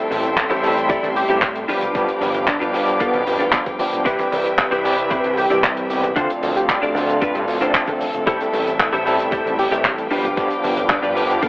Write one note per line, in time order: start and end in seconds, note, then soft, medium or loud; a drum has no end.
0.00 0.60 G3 medium
0.00 0.60 A3 medium
0.00 0.60 C4 medium
0.00 0.61 E4 medium
0.00 0.61 A4 medium
0.00 1.65 A4 medium
0.00 1.67 E5 medium
0.00 1.67 G5 medium
0.00 1.67 C6 medium
0.10 0.47 A1 medium
0.10 muted clean electric guitar stroke soft
0.10 open hi-hat loud
0.10 high conga loud
0.10 shaker medium
0.24 closed hi-hat medium
0.24 shaker medium
0.37 kick loud
0.37 clap loud
0.37 closed hi-hat medium
0.37 shaker medium
0.50 1.00 A1 medium
0.50 0.70 E4 medium
0.50 0.70 G4 medium
0.50 0.70 A4 medium
0.50 0.71 C5 loud
0.50 closed hi-hat medium
0.50 muted conga medium
0.50 shaker soft
0.51 shaker soft
0.62 1.65 G3 medium
0.62 1.65 A3 medium
0.62 1.65 C4 medium
0.62 1.66 E4 medium
0.62 1.66 A4 loud
0.62 open hi-hat loud
0.62 shaker medium
0.77 closed hi-hat medium
0.77 shaker medium
0.89 1.09 E4 medium
0.89 1.10 G4 medium
0.89 1.10 A4 medium
0.89 1.10 D5 loud
0.89 kick loud
0.89 closed hi-hat medium
0.89 muted conga soft
0.89 shaker medium
1.02 1.25 A1 medium
1.02 closed hi-hat medium
1.02 high conga medium
1.02 shaker soft
1.16 1.25 G4 medium
1.16 open hi-hat loud
1.16 shaker medium
1.28 1.66 A1 loud
1.28 1.42 E4 medium
1.28 1.42 G4 medium
1.28 1.38 G4 medium
1.28 1.43 A4 medium
1.28 1.43 C5 medium
1.28 closed hi-hat medium
1.28 high conga medium
1.28 shaker medium
1.42 kick loud
1.42 clap loud
1.42 closed hi-hat medium
1.42 muted conga medium
1.42 shaker medium
1.55 muted clean electric guitar stroke soft
1.55 closed hi-hat medium
1.55 shaker soft
1.68 1.92 F3 medium
1.68 1.92 G3 medium
1.68 1.92 B3 medium
1.68 2.11 D4 medium
1.68 1.92 D4 medium
1.68 2.11 F4 medium
1.68 2.11 G4 medium
1.68 1.92 G4 medium
1.68 4.04 B4 medium
1.68 2.11 B4 loud
1.68 4.04 F5 medium
1.68 6.12 G5 medium
1.68 4.04 D6 medium
1.68 open hi-hat loud
1.68 high conga medium
1.68 shaker medium
1.81 closed hi-hat medium
1.81 muted conga medium
1.81 low conga medium
1.81 shaker medium
1.81 shaker soft
1.94 2.06 G1 loud
1.94 2.70 F3 medium
1.94 2.71 G3 medium
1.94 2.71 B3 medium
1.94 2.71 D4 medium
1.94 2.71 G4 loud
1.94 kick loud
1.94 closed hi-hat medium
1.94 shaker medium
1.96 shaker medium
2.08 closed hi-hat medium
2.08 shaker soft
2.21 2.58 G1 medium
2.21 muted clean electric guitar stroke soft
2.21 open hi-hat loud
2.21 high conga medium
2.21 shaker medium
2.34 closed hi-hat medium
2.34 muted conga medium
2.34 shaker medium
2.36 shaker medium
2.47 2.56 D4 medium
2.47 kick loud
2.47 clap loud
2.47 closed hi-hat medium
2.47 shaker medium
2.49 shaker medium
2.60 3.10 G1 medium
2.60 2.80 D4 medium
2.60 2.69 D4 medium
2.60 2.81 F4 medium
2.60 2.81 G4 medium
2.60 2.81 B4 loud
2.60 closed hi-hat medium
2.60 shaker soft
2.62 shaker medium
2.73 3.76 F3 medium
2.73 3.76 G3 medium
2.73 3.76 B3 medium
2.73 3.77 D4 medium
2.73 3.77 G4 loud
2.73 open hi-hat loud
2.73 muted conga medium
2.73 shaker medium
2.86 closed hi-hat medium
2.86 shaker medium
2.89 shaker medium
3.00 3.53 B3 loud
3.00 3.20 D4 medium
3.00 3.20 F4 medium
3.00 3.20 G4 medium
3.00 3.21 A4 loud
3.00 kick loud
3.00 closed hi-hat medium
3.00 shaker medium
3.14 3.25 B1 loud
3.14 closed hi-hat medium
3.14 high conga medium
3.14 shaker soft
3.27 3.38 G1 medium
3.27 open hi-hat loud
3.27 muted conga medium
3.27 shaker medium
3.39 3.51 D1 medium
3.39 3.53 D4 medium
3.39 3.53 F4 medium
3.39 3.53 G4 medium
3.39 3.53 A4 loud
3.39 closed hi-hat medium
3.39 high conga medium
3.39 shaker medium
3.41 shaker medium
3.52 kick loud
3.52 clap loud
3.52 closed hi-hat medium
3.52 shaker medium
3.66 muted clean electric guitar stroke soft
3.66 kick medium
3.66 closed hi-hat medium
3.66 muted conga medium
3.66 shaker soft
3.79 4.02 F3 medium
3.79 4.02 G3 medium
3.79 4.03 B3 medium
3.79 4.03 D4 medium
3.79 4.03 G4 medium
3.79 open hi-hat loud
3.79 high conga medium
3.79 shaker medium
3.92 closed hi-hat medium
3.92 low conga medium
3.92 shaker medium
3.92 shaker soft
4.05 4.17 C2 loud
4.05 4.81 E3 medium
4.05 4.81 G3 medium
4.05 4.19 C4 loud
4.05 4.82 C4 medium
4.05 4.19 E4 loud
4.05 4.19 G4 loud
4.05 4.82 G4 loud
4.05 4.82 B4 medium
4.05 4.19 B4 loud
4.05 6.15 B4 medium
4.05 6.14 E5 medium
4.05 kick loud
4.05 closed hi-hat medium
4.05 shaker medium
4.18 closed hi-hat medium
4.18 muted conga medium
4.18 shaker soft
4.20 shaker medium
4.32 4.68 C2 medium
4.32 muted clean electric guitar stroke soft
4.32 open hi-hat loud
4.32 high conga medium
4.32 shaker medium
4.44 closed hi-hat medium
4.44 shaker medium
4.47 shaker medium
4.58 kick loud
4.58 clap loud
4.58 closed hi-hat medium
4.58 muted conga medium
4.58 shaker medium
4.71 5.21 C2 medium
4.71 4.91 C4 medium
4.71 4.91 E4 medium
4.71 4.92 G4 medium
4.71 4.92 B4 loud
4.71 closed hi-hat medium
4.71 shaker soft
4.71 shaker medium
4.83 5.86 E3 loud
4.83 5.87 G3 medium
4.83 5.87 C4 medium
4.83 5.87 G4 loud
4.83 5.87 B4 medium
4.83 open hi-hat loud
4.83 shaker medium
4.98 closed hi-hat medium
4.98 shaker medium
4.98 shaker soft
5.10 5.31 C4 medium
5.10 5.31 E4 medium
5.10 5.31 G4 medium
5.10 5.31 B4 loud
5.10 kick loud
5.10 closed hi-hat medium
5.10 muted conga medium
5.10 shaker medium
5.24 5.46 C2 loud
5.24 closed hi-hat medium
5.24 high conga medium
5.24 shaker soft
5.37 5.46 G4 medium
5.37 open hi-hat loud
5.37 shaker medium
5.50 6.13 C2 loud
5.50 5.63 C4 medium
5.50 5.64 E4 medium
5.50 5.59 G4 medium
5.50 5.64 G4 medium
5.50 5.64 D5 loud
5.50 closed hi-hat medium
5.50 muted conga medium
5.50 high conga medium
5.50 shaker medium
5.50 shaker soft
5.63 kick loud
5.63 clap loud
5.63 closed hi-hat medium
5.63 shaker medium
5.77 muted clean electric guitar stroke soft
5.77 closed hi-hat medium
5.77 shaker soft
5.90 6.13 E3 medium
5.90 6.13 G3 medium
5.90 6.13 B3 medium
5.90 6.13 C4 medium
5.90 6.13 G4 medium
5.90 open hi-hat loud
5.90 high conga medium
5.90 shaker medium
6.03 closed hi-hat medium
6.03 muted conga medium
6.03 low conga medium
6.03 shaker medium
6.15 6.28 D2 loud
6.15 6.91 D3 medium
6.15 6.92 F3 medium
6.15 6.92 A3 medium
6.15 6.92 C4 medium
6.15 6.29 D4 loud
6.15 6.30 F4 loud
6.15 6.92 F4 loud
6.15 10.07 A4 medium
6.15 6.30 A4 loud
6.15 6.30 C5 loud
6.15 8.25 D5 medium
6.15 8.25 F5 medium
6.15 kick loud
6.15 closed hi-hat medium
6.15 shaker medium
6.30 closed hi-hat medium
6.30 shaker soft
6.30 shaker medium
6.42 6.79 D2 medium
6.42 muted clean electric guitar stroke soft
6.42 open hi-hat loud
6.42 muted conga soft
6.42 high conga medium
6.42 shaker medium
6.56 6.64 G4 medium
6.56 closed hi-hat medium
6.56 shaker medium
6.69 6.78 G4 medium
6.69 kick loud
6.69 clap loud
6.69 closed hi-hat medium
6.69 shaker medium
6.82 7.32 D2 medium
6.82 7.02 D4 medium
6.82 7.02 F4 medium
6.82 7.02 A4 medium
6.82 7.02 D5 loud
6.82 closed hi-hat medium
6.82 shaker soft
6.94 7.58 D3 medium
6.94 7.58 F3 medium
6.94 7.59 A3 medium
6.94 7.59 C4 medium
6.94 7.59 F4 loud
6.94 open hi-hat loud
6.94 muted conga medium
6.94 shaker medium
7.09 closed hi-hat medium
7.09 shaker medium
7.21 7.41 D4 loud
7.21 7.42 F4 medium
7.21 7.42 A4 medium
7.21 7.42 B4 loud
7.21 kick loud
7.21 closed hi-hat medium
7.21 shaker medium
7.34 7.46 G2 loud
7.34 closed hi-hat medium
7.34 muted conga medium
7.34 high conga medium
7.34 shaker soft
7.48 7.59 D2 medium
7.48 open hi-hat loud
7.48 shaker medium
7.60 7.72 A1 medium
7.60 8.23 D3 loud
7.60 8.24 F3 medium
7.60 8.24 A3 medium
7.60 8.24 C4 medium
7.60 7.74 D4 medium
7.60 7.74 F4 medium
7.60 7.75 A4 medium
7.60 8.24 A4 loud
7.60 7.75 C5 medium
7.60 closed hi-hat medium
7.60 high conga medium
7.60 shaker medium
7.74 kick loud
7.74 clap loud
7.74 closed hi-hat medium
7.74 shaker medium
7.86 muted clean electric guitar stroke soft
7.86 kick medium
7.86 closed hi-hat medium
7.86 muted conga medium
7.86 shaker soft
8.01 open hi-hat loud
8.01 high conga medium
8.01 shaker medium
8.13 closed hi-hat medium
8.13 low conga medium
8.13 shaker medium
8.26 8.38 A1 loud
8.26 9.02 G3 medium
8.26 9.02 A3 medium
8.26 9.03 C4 medium
8.26 8.40 E4 loud
8.26 9.03 E4 medium
8.26 8.40 G4 loud
8.26 8.40 A4 loud
8.26 9.03 A4 medium
8.26 8.41 C5 loud
8.26 10.09 E5 medium
8.26 11.49 G5 medium
8.26 kick loud
8.26 closed hi-hat medium
8.26 shaker medium
8.40 closed hi-hat medium
8.40 muted conga medium
8.40 shaker soft
8.53 8.89 A1 medium
8.53 muted clean electric guitar stroke soft
8.53 open hi-hat loud
8.53 high conga medium
8.53 shaker medium
8.67 closed hi-hat medium
8.67 shaker medium
8.80 kick loud
8.80 clap loud
8.80 closed hi-hat medium
8.80 shaker medium
8.93 9.42 A1 medium
8.93 9.12 E4 medium
8.93 9.12 G4 medium
8.93 9.13 A4 medium
8.93 9.13 C5 loud
8.93 closed hi-hat medium
8.93 muted conga medium
8.93 shaker soft
9.05 10.08 G3 medium
9.05 10.08 A3 medium
9.05 10.08 C4 medium
9.05 10.08 E4 medium
9.05 10.08 A4 loud
9.05 open hi-hat loud
9.05 shaker medium
9.19 closed hi-hat medium
9.19 shaker medium
9.32 9.52 E4 medium
9.32 9.52 G4 medium
9.32 9.52 A4 medium
9.32 9.52 C5 medium
9.32 kick loud
9.32 closed hi-hat medium
9.32 muted conga medium
9.32 shaker medium
9.34 shaker medium
9.45 9.67 A1 medium
9.45 closed hi-hat medium
9.45 high conga medium
9.45 shaker soft
9.59 9.67 G4 loud
9.59 open hi-hat loud
9.59 shaker medium
9.71 10.08 A1 loud
9.71 9.84 E4 medium
9.71 9.85 G4 medium
9.71 9.80 G4 medium
9.71 9.85 A4 medium
9.71 9.85 C5 medium
9.71 closed hi-hat medium
9.71 high conga medium
9.71 shaker medium
9.84 kick loud
9.84 clap loud
9.84 closed hi-hat medium
9.84 muted conga medium
9.84 shaker medium
9.97 muted clean electric guitar stroke soft
9.97 closed hi-hat medium
9.97 shaker soft
10.10 10.34 F3 medium
10.10 10.34 G3 medium
10.10 10.34 B3 medium
10.10 10.53 D4 loud
10.10 10.34 D4 medium
10.10 10.53 F4 medium
10.10 10.34 G4 medium
10.10 10.54 G4 medium
10.10 11.49 B4 medium
10.10 10.54 B4 medium
10.10 11.49 F5 medium
10.10 11.49 D6 medium
10.10 open hi-hat loud
10.10 high conga medium
10.10 shaker medium
10.24 closed hi-hat medium
10.24 muted conga medium
10.24 low conga medium
10.24 shaker soft
10.24 shaker medium
10.36 10.49 G1 loud
10.36 11.13 F3 medium
10.36 11.13 G3 medium
10.36 11.13 B3 medium
10.36 11.13 D4 medium
10.36 11.14 G4 loud
10.36 kick loud
10.36 closed hi-hat medium
10.36 shaker medium
10.39 shaker medium
10.50 closed hi-hat medium
10.50 shaker soft
10.63 11.00 G1 medium
10.63 muted clean electric guitar stroke soft
10.63 open hi-hat loud
10.63 high conga medium
10.63 shaker medium
10.77 closed hi-hat medium
10.77 muted conga medium
10.77 shaker medium
10.90 10.99 D4 medium
10.90 kick loud
10.90 clap loud
10.90 closed hi-hat medium
10.90 shaker medium
11.02 11.49 G1 medium
11.02 11.23 D4 medium
11.02 11.12 D4 medium
11.02 11.23 F4 medium
11.02 11.23 G4 medium
11.02 11.23 B4 loud
11.02 closed hi-hat medium
11.02 shaker soft
11.15 11.49 F3 medium
11.15 11.49 G3 medium
11.15 11.49 B3 medium
11.15 11.49 D4 medium
11.15 11.49 G4 loud
11.15 open hi-hat loud
11.15 muted conga medium
11.15 shaker medium
11.30 closed hi-hat medium
11.30 shaker soft
11.30 shaker medium
11.42 11.49 B3 loud
11.42 11.49 D4 medium
11.42 11.49 F4 medium
11.42 11.49 G4 medium
11.42 11.49 A4 loud
11.42 kick loud
11.42 closed hi-hat medium
11.42 shaker medium